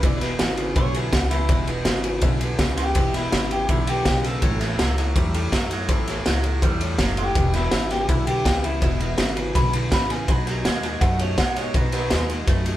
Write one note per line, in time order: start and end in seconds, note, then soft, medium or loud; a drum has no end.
0.02 0.36 E1 medium
0.02 0.20 E2 medium
0.02 0.20 B2 medium
0.02 0.21 C#3 medium
0.02 0.21 E3 medium
0.02 0.22 B3 medium
0.02 0.21 E4 loud
0.02 0.20 G#4 medium
0.02 0.21 B4 medium
0.02 0.17 D5 medium
0.02 kick loud
0.02 ride medium
0.17 0.28 B4 medium
0.21 0.38 E2 medium
0.21 0.39 B2 loud
0.21 0.38 B3 soft
0.21 0.39 E4 medium
0.21 0.40 G#4 medium
0.21 0.39 B4 medium
0.21 snare soft
0.21 ride medium
0.28 0.46 G#4 loud
0.39 0.73 G#1 medium
0.39 0.56 E2 medium
0.39 0.56 C#3 loud
0.39 0.58 B3 medium
0.39 0.58 E4 medium
0.39 0.57 G#4 medium
0.39 0.58 B4 medium
0.39 snare loud
0.39 ride medium
0.57 0.74 E2 medium
0.57 0.75 C#3 medium
0.57 0.76 B3 medium
0.57 0.77 E4 medium
0.57 0.77 G#4 medium
0.57 0.77 B4 medium
0.57 ride medium
0.76 1.09 B1 loud
0.76 0.93 E2 medium
0.76 0.96 C#3 medium
0.76 0.93 D3 loud
0.76 0.95 E3 medium
0.76 0.96 B3 medium
0.76 0.95 E4 medium
0.76 0.93 G#4 medium
0.76 0.94 B4 medium
0.76 0.94 C#5 medium
0.76 kick loud
0.76 ride medium
0.94 1.12 E2 medium
0.94 1.12 D3 medium
0.94 1.11 B3 medium
0.94 1.12 E4 medium
0.94 1.13 G#4 medium
0.94 1.13 B4 medium
0.94 ride medium
1.13 1.46 C#2 medium
1.13 1.30 E2 medium
1.13 1.31 C#3 medium
1.13 1.31 B3 medium
1.13 1.31 E4 medium
1.13 1.31 F#4 medium
1.13 1.30 G#4 medium
1.13 1.31 B4 medium
1.13 kick medium
1.13 snare loud
1.13 ride medium
1.31 1.48 E2 medium
1.31 1.48 C#3 medium
1.31 1.49 B3 soft
1.31 1.67 E4 medium
1.31 1.50 E4 medium
1.31 1.50 G#4 medium
1.31 1.50 B4 medium
1.31 snare soft
1.31 ride medium
1.49 1.82 E1 medium
1.49 1.66 E2 medium
1.49 1.66 B2 medium
1.49 1.69 C#3 medium
1.49 1.68 E3 medium
1.49 1.69 B3 medium
1.49 1.68 E4 loud
1.49 1.67 G#4 medium
1.49 1.68 B4 loud
1.49 kick loud
1.49 ride medium
1.67 1.85 E2 medium
1.67 1.85 B2 medium
1.67 1.85 B3 soft
1.67 1.86 E4 medium
1.67 1.87 G#4 medium
1.67 1.86 B4 medium
1.67 ride medium
1.85 2.18 G#1 medium
1.85 2.03 E2 loud
1.85 2.03 C#3 loud
1.85 2.05 B3 medium
1.85 2.05 E4 medium
1.85 2.03 G#4 medium
1.85 2.04 B4 medium
1.85 snare loud
1.85 ride medium
2.04 2.21 E2 medium
2.04 2.21 C#3 medium
2.04 2.22 B3 medium
2.04 2.23 E4 medium
2.04 2.23 G#4 medium
2.04 2.23 B4 medium
2.04 ride medium
2.21 2.55 B1 loud
2.21 2.39 E2 medium
2.21 2.42 C#3 medium
2.21 2.39 D3 loud
2.21 2.41 E3 medium
2.21 2.42 B3 medium
2.21 2.41 E4 medium
2.21 2.40 G#4 medium
2.21 2.41 B4 loud
2.21 kick loud
2.21 ride medium
2.40 2.57 E2 medium
2.40 2.57 D3 medium
2.40 2.58 B3 medium
2.40 2.58 E4 medium
2.40 2.60 G#4 medium
2.40 2.59 B4 medium
2.40 ride medium
2.59 2.92 C#2 loud
2.59 2.76 E2 medium
2.59 2.76 C#3 loud
2.59 2.78 B3 medium
2.59 2.77 E4 medium
2.59 2.76 G#4 medium
2.59 2.76 B4 medium
2.59 kick medium
2.59 snare loud
2.59 ride medium
2.77 2.94 E2 medium
2.77 2.94 C#3 loud
2.77 2.95 B3 soft
2.77 2.95 E4 medium
2.77 3.13 G4 medium
2.77 2.96 G#4 medium
2.77 2.96 B4 medium
2.77 snare soft
2.77 ride medium
2.95 3.28 E1 medium
2.95 3.12 E2 medium
2.95 3.12 B2 loud
2.95 3.15 C#3 medium
2.95 3.14 E3 medium
2.95 3.15 B3 medium
2.95 3.14 E4 medium
2.95 3.13 G#4 medium
2.95 3.13 B4 loud
2.95 kick loud
2.95 ride medium
3.13 3.30 E2 medium
3.13 3.31 B2 loud
3.13 3.31 B3 soft
3.13 3.32 E4 soft
3.13 3.51 E4 medium
3.13 3.33 G#4 medium
3.13 3.32 B4 medium
3.13 snare soft
3.13 ride medium
3.32 3.65 G#1 medium
3.32 3.49 E2 loud
3.32 3.49 C#3 loud
3.32 3.51 B3 medium
3.32 3.50 E4 medium
3.32 3.49 G#4 medium
3.32 3.50 B4 medium
3.32 snare loud
3.32 ride medium
3.50 3.67 E2 medium
3.50 3.67 C#3 medium
3.50 3.69 B3 soft
3.50 3.69 E4 medium
3.50 3.69 G4 medium
3.50 3.69 G#4 medium
3.50 3.69 B4 soft
3.50 ride medium
3.68 4.02 B1 loud
3.68 3.85 E2 medium
3.68 3.88 C#3 medium
3.68 3.86 D3 medium
3.68 3.88 E3 medium
3.68 3.88 B3 medium
3.68 3.88 E4 medium
3.68 3.87 G#4 medium
3.68 3.88 B4 medium
3.68 kick loud
3.68 ride medium
3.87 4.04 E2 medium
3.87 4.04 D3 medium
3.87 4.05 B3 soft
3.87 4.05 E4 soft
3.87 4.24 G4 loud
3.87 4.07 G#4 medium
3.87 4.06 B4 medium
3.87 ride medium
4.05 4.38 B1 medium
4.05 4.22 E2 medium
4.05 4.22 C#3 medium
4.05 4.24 B3 medium
4.05 4.25 E4 medium
4.05 4.23 G#4 medium
4.05 4.24 B4 medium
4.05 kick medium
4.05 snare loud
4.05 ride medium
4.24 4.41 E2 medium
4.24 4.41 C#3 medium
4.24 4.42 B3 soft
4.24 4.41 E4 soft
4.24 4.43 G#4 medium
4.24 4.96 A4 medium
4.24 4.43 B4 medium
4.24 snare soft
4.24 ride medium
4.42 4.75 A1 loud
4.42 4.59 A2 medium
4.42 4.59 E3 medium
4.42 4.61 F#3 medium
4.42 4.61 A3 medium
4.42 4.61 E4 medium
4.42 4.60 A4 medium
4.42 4.59 C#5 medium
4.42 kick loud
4.42 ride medium
4.60 4.77 A2 medium
4.60 4.77 E3 medium
4.60 4.78 E4 soft
4.60 4.79 A4 soft
4.60 4.79 C#5 medium
4.60 snare soft
4.60 ride medium
4.78 5.12 C#2 medium
4.78 4.95 A2 medium
4.78 4.97 F#3 medium
4.78 4.95 F#3 loud
4.78 4.98 E4 medium
4.78 4.97 A4 medium
4.78 4.96 C#5 medium
4.78 snare loud
4.78 ride medium
4.97 5.14 A2 medium
4.97 5.14 F#3 medium
4.97 5.16 E4 medium
4.97 5.16 A4 medium
4.97 5.16 C#5 medium
4.97 snare soft
4.97 ride medium
5.16 5.48 E2 loud
5.16 5.33 A2 medium
5.16 5.35 F#3 medium
5.16 5.33 G3 loud
5.16 5.34 A3 medium
5.16 5.35 E4 medium
5.16 5.34 A4 loud
5.16 5.32 C#5 loud
5.16 kick loud
5.16 ride medium
5.34 5.51 A2 medium
5.34 5.51 G3 medium
5.34 5.52 E4 medium
5.34 5.52 A4 medium
5.34 5.52 C#5 medium
5.34 ride medium
5.52 5.85 F#2 medium
5.52 5.70 A2 medium
5.52 5.71 F#3 medium
5.52 5.70 F#3 medium
5.52 5.71 E4 medium
5.52 5.71 A4 medium
5.52 5.70 C#5 medium
5.52 kick medium
5.52 snare loud
5.52 ride medium
5.71 5.88 A2 medium
5.71 5.88 F#3 medium
5.71 5.89 E4 medium
5.71 5.90 A4 medium
5.71 5.89 C#5 medium
5.71 snare soft
5.71 ride medium
5.88 6.21 A1 medium
5.88 6.06 A2 medium
5.88 6.06 E3 loud
5.88 6.08 F#3 medium
5.88 6.08 A3 medium
5.88 6.08 E4 loud
5.88 6.08 A4 loud
5.88 6.07 C#5 loud
5.88 kick loud
5.88 ride medium
6.07 6.25 A2 medium
6.07 6.25 E3 medium
6.07 6.25 E4 soft
6.07 6.26 A4 medium
6.07 6.26 C#5 medium
6.07 snare soft
6.07 ride medium
6.25 6.59 C#2 medium
6.25 6.42 A2 loud
6.25 6.44 F#3 medium
6.25 6.43 F#3 loud
6.25 6.44 E4 medium
6.25 6.44 A4 medium
6.25 6.43 C#5 medium
6.25 snare loud
6.25 ride medium
6.43 6.61 A2 medium
6.43 6.61 F#3 medium
6.43 6.63 E4 medium
6.43 6.63 A4 medium
6.43 6.63 C#5 medium
6.43 ride medium
6.62 6.95 E2 loud
6.62 6.80 A2 medium
6.62 6.81 F#3 medium
6.62 6.80 G3 loud
6.62 6.81 A3 medium
6.62 6.82 E4 medium
6.62 6.82 A4 medium
6.62 6.80 C#5 loud
6.62 kick loud
6.62 ride medium
6.81 6.98 A2 medium
6.81 6.98 G3 medium
6.81 6.99 E4 medium
6.81 7.00 A4 medium
6.81 7.00 C#5 medium
6.81 ride medium
6.99 7.32 F#1 medium
6.99 7.16 A2 medium
6.99 7.18 F#3 medium
6.99 7.16 F#3 loud
6.99 7.18 E4 medium
6.99 7.19 A4 medium
6.99 7.18 C#5 medium
6.99 kick medium
6.99 snare loud
6.99 ride medium
7.17 7.34 A2 medium
7.17 7.35 F#3 medium
7.17 7.53 G4 loud
7.17 7.37 A4 soft
7.17 7.37 C#5 medium
7.17 ride medium
7.21 7.38 E4 soft
7.35 7.68 E1 medium
7.35 7.53 E2 medium
7.35 7.53 B2 medium
7.35 7.55 C#3 medium
7.35 7.55 E3 medium
7.35 7.55 B3 loud
7.35 7.56 E4 medium
7.35 7.55 G#4 loud
7.35 7.56 B4 medium
7.35 kick loud
7.35 ride medium
7.53 7.71 E2 medium
7.53 7.71 B2 medium
7.53 7.90 E4 loud
7.53 7.72 E4 medium
7.53 7.74 G#4 medium
7.53 7.73 B4 medium
7.53 snare soft
7.53 ride medium
7.58 7.72 B3 medium
7.71 8.05 G#1 medium
7.71 7.89 E2 medium
7.71 7.90 C#3 loud
7.71 7.91 B3 medium
7.71 7.91 E4 medium
7.71 7.90 G#4 medium
7.71 7.91 B4 medium
7.71 snare loud
7.71 ride medium
7.90 8.07 E2 medium
7.90 8.07 C#3 medium
7.90 8.09 B3 soft
7.90 8.09 E4 medium
7.90 8.09 G4 medium
7.90 8.09 G#4 medium
7.90 8.09 B4 medium
7.90 snare soft
7.90 ride medium
8.09 8.41 B1 medium
8.09 8.26 E2 medium
8.09 8.28 C#3 medium
8.09 8.26 D3 medium
8.09 8.28 E3 medium
8.09 8.28 B3 medium
8.09 8.26 E4 medium
8.09 8.27 E4 medium
8.09 8.26 G#4 medium
8.09 8.26 B4 medium
8.09 kick loud
8.09 ride medium
8.27 8.43 E2 medium
8.27 8.44 D3 medium
8.27 8.45 B3 soft
8.27 8.45 E4 medium
8.27 8.63 G4 medium
8.27 8.46 G#4 medium
8.27 8.46 B4 medium
8.27 ride medium
8.45 8.78 C#2 medium
8.45 8.62 E2 medium
8.45 8.62 C#3 loud
8.45 8.64 B3 medium
8.45 8.65 E4 medium
8.45 8.63 G#4 medium
8.45 8.64 B4 medium
8.45 kick medium
8.45 snare loud
8.45 ride medium
8.63 8.80 E2 medium
8.63 8.80 C#3 medium
8.63 8.82 B3 soft
8.63 9.35 E4 loud
8.63 8.82 E4 medium
8.63 8.82 G#4 medium
8.63 8.82 B4 soft
8.63 ride medium
8.82 9.15 E1 medium
8.82 8.99 E2 medium
8.82 8.99 B2 loud
8.82 9.01 C#3 medium
8.82 9.01 E3 medium
8.82 9.01 B3 loud
8.82 9.01 E4 medium
8.82 8.99 G#4 medium
8.82 9.00 B4 medium
8.82 kick loud
8.82 ride medium
9.00 9.17 E2 medium
9.00 9.17 B2 medium
9.00 9.17 B3 medium
9.00 9.18 E4 soft
9.00 9.19 G#4 medium
9.00 9.18 B4 medium
9.00 ride medium
9.18 9.51 G#1 loud
9.18 9.34 E2 loud
9.18 9.35 C#3 loud
9.18 9.37 B3 medium
9.18 9.37 E4 medium
9.18 9.35 G#4 medium
9.18 9.36 B4 medium
9.18 snare loud
9.18 ride medium
9.35 9.53 E2 medium
9.35 9.53 C#3 medium
9.35 9.54 B3 soft
9.35 9.55 E4 medium
9.35 9.55 G#4 medium
9.35 9.54 B4 medium
9.35 ride medium
9.55 9.88 B1 loud
9.55 9.71 E2 medium
9.55 9.74 C#3 medium
9.55 9.72 D3 loud
9.55 9.74 E3 medium
9.55 9.74 B3 medium
9.55 9.74 E4 medium
9.55 9.73 G#4 medium
9.55 9.74 B4 medium
9.55 9.73 B5 medium
9.55 kick loud
9.55 snare soft
9.55 ride medium
9.72 9.90 E2 medium
9.72 9.90 D3 medium
9.72 9.91 B3 soft
9.72 9.92 E4 soft
9.72 9.92 G#4 medium
9.72 9.93 B4 medium
9.72 ride medium
9.91 10.24 A1 medium
9.91 10.08 E2 medium
9.91 10.08 C#3 medium
9.91 10.10 B3 medium
9.91 10.11 E4 medium
9.91 10.09 G#4 medium
9.91 10.11 B4 medium
9.91 10.11 B5 medium
9.91 kick medium
9.91 snare loud
9.91 ride medium
10.10 10.27 E2 medium
10.10 10.27 C#3 medium
10.10 10.27 B3 soft
10.10 10.28 E4 medium
10.10 10.29 G#4 medium
10.10 10.29 B4 medium
10.10 10.28 G#5 medium
10.10 snare soft
10.10 ride medium
10.28 10.61 B1 medium
10.28 10.45 B2 medium
10.28 10.45 F#3 loud
10.28 10.47 B3 medium
10.28 10.47 D#4 medium
10.28 10.47 F#4 medium
10.28 10.46 G#4 loud
10.28 10.47 B5 loud
10.28 kick loud
10.28 ride medium
10.47 10.63 B2 medium
10.47 10.64 F#3 medium
10.47 10.65 D#4 medium
10.47 10.64 F#4 soft
10.47 10.65 G#4 medium
10.47 10.65 G#5 loud
10.47 snare soft
10.47 ride medium
10.65 10.98 D#2 medium
10.65 10.81 B2 loud
10.65 10.82 G#3 loud
10.65 10.83 B3 medium
10.65 10.83 D#4 medium
10.65 10.84 F#4 medium
10.65 10.83 F#5 loud
10.65 snare loud
10.65 ride medium
10.82 10.99 B2 medium
10.82 11.00 G#3 medium
10.82 11.02 D#4 medium
10.82 11.02 F#4 medium
10.82 11.02 G#4 medium
10.82 11.00 G#5 medium
10.82 snare soft
10.82 ride medium
11.01 11.34 F#2 loud
11.01 11.18 B2 medium
11.01 11.19 A3 medium
11.01 11.20 B3 medium
11.01 11.20 D#4 medium
11.01 11.21 F#4 medium
11.01 11.19 G#4 medium
11.01 11.19 F#5 medium
11.01 kick loud
11.01 snare soft
11.01 ride medium
11.19 11.37 B2 medium
11.19 11.37 A3 medium
11.19 11.39 D#4 medium
11.19 11.38 F#4 soft
11.19 11.39 G#4 medium
11.19 11.38 C#5 medium
11.19 ride medium
11.38 11.55 B2 medium
11.38 11.55 G#3 loud
11.38 11.57 B3 medium
11.38 11.57 D#4 medium
11.38 11.57 F#4 medium
11.38 11.56 G#4 medium
11.38 11.56 F#5 medium
11.38 kick medium
11.38 snare loud
11.38 ride medium
11.56 11.73 B2 medium
11.56 11.74 G#3 medium
11.56 11.75 D#4 medium
11.56 11.75 F#4 soft
11.56 11.75 G#4 medium
11.56 11.75 C#5 medium
11.56 snare soft
11.56 ride medium
11.74 12.07 B1 loud
11.74 11.91 B2 medium
11.74 11.92 F#3 loud
11.74 11.94 B3 medium
11.74 11.93 D#4 medium
11.74 11.94 F#4 medium
11.74 11.92 G#4 medium
11.74 11.92 B4 loud
11.74 kick loud
11.74 ride medium
11.92 12.10 B2 medium
11.92 12.10 F#3 loud
11.92 12.12 D#4 medium
11.92 12.11 F#4 soft
11.92 12.12 G#4 medium
11.92 12.29 B4 loud
11.92 snare soft
11.92 ride medium
12.10 12.44 D#2 loud
12.10 12.28 B2 loud
12.10 12.29 G#3 loud
12.10 12.30 B3 medium
12.10 12.30 D#4 medium
12.10 12.30 F#4 medium
12.10 12.29 G#4 medium
12.10 snare loud
12.10 ride medium
12.30 12.46 B2 medium
12.30 12.47 G#3 medium
12.30 12.48 D#4 medium
12.30 12.47 F#4 medium
12.30 12.48 G#4 medium
12.30 snare soft
12.30 ride medium
12.47 12.77 F#2 loud
12.47 12.64 B2 medium
12.47 12.65 A3 loud
12.47 12.66 B3 loud
12.47 12.66 D#4 medium
12.47 12.66 F#4 medium
12.47 12.65 G#4 loud
12.47 kick loud
12.47 snare soft
12.47 ride medium
12.66 12.77 B2 medium
12.66 12.77 A3 medium
12.66 12.77 D#4 medium
12.66 12.77 F#4 medium
12.66 12.77 G#4 medium
12.66 ride medium